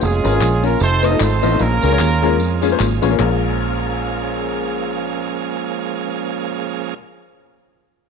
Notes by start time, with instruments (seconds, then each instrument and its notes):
0.01 fingered electric bass F1, horn section G#3 C#4 F4 G#4, tonewheel organ A#3 C#4 F4, tambourine
0.24 fingered electric bass G#1, upright piano C#4 F4 A#4, tambourine
0.32 upright piano C#4 F4 A#4
0.41 fingered electric bass A#1, clap, tambourine
0.63 horn section A#3 A#4, upright piano C#4 F4 A#4, tambourine
0.79 fingered electric bass F1, tonewheel organ F3 A3 C4 D#4 A4, horn section C4 D#4 A4 C5, tambourine
1.03 upright piano A3 C4 D#4 F4 C5, horn section D#4 D#5, tambourine
1.11 upright piano A3 C4 D#4 F4 A4
1.20 fingered electric bass G#1, horn section C4 D#4 A4 C5, clap, tambourine
1.42 fingered electric bass A1, upright piano A3 C4 D#4 F4 D#5, tambourine
1.52 upright piano A3 C4 D#4 F4 D#5
1.59 fingered electric bass A#1, upright piano A#2, tonewheel organ F3 G#3 A#3 C4 G#4, horn section A#3 C#4 F4 A#4, tambourine
1.64 tonewheel organ C#4
1.82 fingered electric bass C#2, upright piano G#3 A#3 C#4 F4 A#4, tambourine
1.91 upright piano G#3 A#3 C#4 F4 C#5
1.99 fingered electric bass D#2, clap, tambourine
2.22 upright piano G#3 A#3 C#4 F4 A#4, tambourine
2.40 fingered electric bass F2, tambourine
2.62 upright piano G#3 A#3 C#4 F4 G#4, tambourine
2.71 upright piano G#3 A#3 C#4 F4 C5
2.80 fingered electric bass G#1, clap, tambourine
3.02 fingered electric bass A1, upright piano G#3 A#3 C#4 F4 C#5, tambourine
3.10 upright piano G#3 A#3 C#4 F4 A#4
3.17 fingered electric bass A#1, upright piano A#1 G#3 C#4 F4, tonewheel organ F3 A#3 C#4 G#4, clap
3.22 upright piano A#4